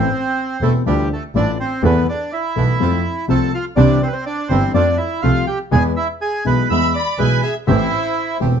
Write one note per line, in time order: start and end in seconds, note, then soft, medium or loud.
0.00 0.57 C4 medium
0.00 0.64 C5 medium
0.61 0.81 E1 medium
0.61 0.82 E1 soft
0.61 0.82 E2 medium
0.61 0.82 E3 soft
0.61 0.73 A3 medium
0.61 0.82 A3 soft
0.61 0.82 C4 soft
0.61 0.82 E4 medium
0.61 0.73 A4 medium
0.61 0.82 A4 soft
0.86 1.06 D2 medium
0.86 1.06 D3 medium
0.86 1.06 E3 soft
0.86 1.06 F3 medium
0.86 1.09 G3 medium
0.86 1.06 A3 soft
0.86 1.06 D4 soft
0.86 1.06 E4 medium
0.86 1.06 F4 medium
0.86 1.09 G4 medium
1.13 1.24 A3 medium
1.13 1.23 A4 medium
1.35 1.55 A1 medium
1.35 1.55 A2 medium
1.35 1.55 E3 soft
1.35 1.55 F3 soft
1.35 1.55 A3 soft
1.35 1.55 D4 soft
1.35 1.58 D4 medium
1.35 1.55 E4 medium
1.35 1.55 F4 soft
1.35 1.58 D5 medium
1.60 1.82 C4 medium
1.60 1.82 C5 medium
1.82 2.03 E2 medium
1.82 2.04 E2 loud
1.82 2.03 E3 medium
1.82 2.03 A3 medium
1.82 2.04 A3 medium
1.82 2.03 B3 medium
1.82 2.04 B3 medium
1.82 2.07 B3 medium
1.82 2.04 E4 medium
1.82 2.03 A4 medium
1.82 2.07 B4 medium
2.09 2.31 D4 medium
2.09 2.33 D5 medium
2.33 3.26 E4 medium
2.33 3.26 E5 medium
2.56 2.77 B1 soft
2.56 2.77 B1 medium
2.56 2.76 B2 medium
2.56 2.76 E3 soft
2.56 2.77 A3 soft
2.56 2.77 A3 medium
2.56 2.76 B3 soft
2.56 2.77 B3 soft
2.56 2.77 E4 medium
2.56 2.76 A4 soft
2.80 3.01 F2 medium
2.80 3.01 F3 medium
2.80 3.01 A3 soft
2.80 3.01 A3 medium
2.80 3.01 C4 soft
2.80 3.01 F4 medium
2.80 3.01 A4 medium
3.28 3.49 C2 medium
3.28 3.49 C3 medium
3.28 3.49 F3 soft
3.28 3.49 A3 soft
3.28 3.50 A3 medium
3.28 3.49 C4 soft
3.28 3.50 C4 soft
3.28 3.50 F4 medium
3.28 3.49 A4 medium
3.28 3.52 A4 medium
3.28 3.54 A5 loud
3.54 3.65 F4 medium
3.54 3.65 F5 loud
3.76 3.98 C2 medium
3.76 3.98 C2 loud
3.76 3.97 C3 medium
3.76 3.97 E3 medium
3.76 3.98 C4 medium
3.76 4.00 D4 medium
3.76 3.98 D4 medium
3.76 3.98 E4 medium
3.76 3.98 G4 medium
3.76 4.02 D5 loud
4.03 4.08 C4 medium
4.03 4.08 C5 medium
4.07 4.14 B4 medium
4.13 4.25 C4 medium
4.13 4.25 C5 medium
4.26 4.49 D4 medium
4.26 4.49 D5 medium
4.48 4.71 G1 medium
4.48 4.71 G1 soft
4.48 4.71 G2 medium
4.48 4.70 E3 soft
4.48 4.72 C4 medium
4.48 4.70 C4 soft
4.48 4.70 D4 soft
4.48 4.71 D4 soft
4.48 4.71 E4 medium
4.48 4.71 G4 medium
4.48 4.72 C5 medium
4.74 4.94 F2 medium
4.74 4.95 F2 medium
4.74 4.95 F3 medium
4.74 4.95 A3 soft
4.74 4.95 A3 medium
4.74 4.95 C4 soft
4.74 4.97 D4 medium
4.74 4.95 F4 medium
4.74 4.95 A4 medium
4.74 4.97 D5 loud
4.97 5.21 E4 medium
4.97 5.23 E5 medium
5.22 5.44 C2 medium
5.22 5.44 C3 medium
5.22 5.44 F3 medium
5.22 5.43 A3 soft
5.22 5.44 A3 medium
5.22 5.44 C4 soft
5.22 5.46 F4 medium
5.22 5.43 F4 medium
5.22 5.44 A4 medium
5.22 5.48 F5 medium
5.47 5.59 G4 medium
5.47 5.58 G5 medium
5.71 5.93 E2 medium
5.71 5.92 E3 medium
5.71 5.92 G#3 medium
5.71 5.92 B3 medium
5.71 5.92 E4 medium
5.71 5.93 G#4 medium
5.71 5.83 G#4 medium
5.71 5.83 G#5 loud
5.96 6.08 E4 medium
5.96 6.07 E5 medium
6.21 6.44 G#4 medium
6.21 6.46 G#5 medium
6.45 6.66 B1 soft
6.45 6.66 B1 medium
6.45 6.65 B2 soft
6.45 6.65 E3 soft
6.45 6.65 G#3 soft
6.45 6.66 G#3 soft
6.45 6.66 B3 soft
6.45 6.66 E4 medium
6.45 6.66 G#4 soft
6.45 6.69 B4 medium
6.45 6.69 B5 medium
6.69 6.90 E2 medium
6.69 6.91 E2 medium
6.69 6.91 E3 medium
6.69 6.90 G#3 soft
6.69 6.91 G#3 soft
6.69 6.90 B3 soft
6.69 6.91 B3 soft
6.69 6.90 E4 medium
6.69 6.91 G#4 medium
6.69 6.93 E5 medium
6.69 6.92 B5 medium
6.69 6.95 E6 loud
6.94 7.17 D5 medium
6.94 7.17 B5 medium
6.94 7.19 D6 medium
7.18 7.39 B1 medium
7.18 7.39 B2 medium
7.18 7.39 E3 soft
7.18 7.39 G#3 soft
7.18 7.39 B3 soft
7.18 7.39 E4 medium
7.18 7.39 G#4 medium
7.18 7.41 B4 medium
7.18 7.42 G#5 medium
7.18 7.43 B5 medium
7.43 7.54 G#4 medium
7.43 7.54 E5 medium
7.43 7.54 G#5 medium
7.67 7.88 A1 medium
7.67 7.88 A2 medium
7.67 7.88 E3 medium
7.67 7.88 A3 medium
7.67 7.88 C4 medium
7.67 8.38 E4 medium
7.67 7.88 G4 medium
7.67 8.37 C5 medium
7.67 8.37 E5 medium
8.40 8.60 E1 soft
8.40 8.60 E1 medium
8.40 8.60 E2 soft
8.40 8.60 E3 soft
8.40 8.60 A3 soft
8.40 8.60 C4 soft
8.40 8.60 G4 soft
8.40 8.60 G4 medium